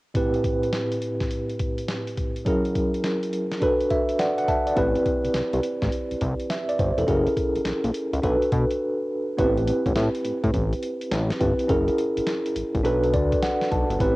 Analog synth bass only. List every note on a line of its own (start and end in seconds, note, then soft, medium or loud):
4.77 4.97 A1 medium
5.24 5.28 C2 medium
5.35 5.42 C2 soft
5.53 5.61 C2 medium
5.82 5.89 A1 medium
6.11 6.15 C2 soft
6.21 6.35 C2 medium
6.79 6.92 G1 medium
6.98 7.05 E1 medium
7.08 7.28 F#1 medium
7.55 7.59 A#1 soft
7.65 7.73 A#1 soft
7.84 7.91 A#1 medium
8.13 8.20 C#2 medium
8.23 8.36 B1 loud
8.52 8.65 B2 loud
9.39 9.72 A1 loud
9.86 9.93 A1 loud
9.96 10.09 A2 medium
10.25 10.33 A2 medium
10.44 10.51 A2 loud
10.54 10.74 A1 medium
11.11 11.32 A1 loud
11.41 11.54 G1 loud
11.69 11.90 F#1 loud
12.17 12.21 A1 soft
12.56 12.63 A1 soft
12.75 12.82 A1 medium
12.85 13.15 B1 medium
13.14 13.34 D2 loud
13.72 13.85 B1 medium
13.90 13.97 G1 loud
14.00 14.16 A1 loud